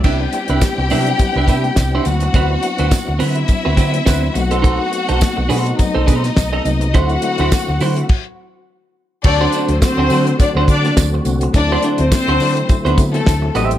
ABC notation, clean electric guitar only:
X:1
M:4/4
L:1/16
Q:"Swing 16ths" 1/4=104
K:Dmix
V:1 name="Clean electric guitar"
[DEB] z2 [DEB] z2 [DEB] z2 [DEB] [DEB] z2 [DEc] z2 | [CFB] z2 [CFB] z2 [CFB] z2 [CFB] [CFB] z [CFB] z2 [^DAc] | [^DAc] z2 [DAc] z2 [DAc] z2 [DAc] [DAc] z2 [DA^d] z2 | [EFc] z2 [EFc] z2 [EFc] z8 z |
z [DFc] [DFc] z2 [DFc] [DFc] z2 [DFc] z6 | z [DFc] [DFc] z2 [DFc] [DFd] z2 [DFc] z4 [Gce] z |]